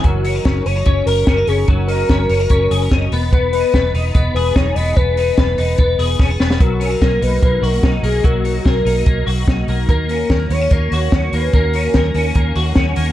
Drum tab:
HH |x-o-x-o-x-o-x-o-|x-o-x-o-x-o-x-o-|x-o-x-o-x-o-x-o-|x-o-x-o-x-o-----|
SD |----o-------o---|----o-------o---|----o-------o---|----o-------o-oo|
BD |o---o---o---o---|o---o---o---o---|o---o---o---o---|o---o---o---o---|

HH |x-o-x-o-x-o-x-o-|x-o-x-o-x-o-x-o-|x-o-x-o-x-o-x-o-|x-o-x-o-x-o-x-o-|
SD |----o-------o---|----o-------o---|----o-------o---|----o-------o---|
BD |o---o---o---o---|o---o---o---o---|o---o---o---o---|o---o---o---o---|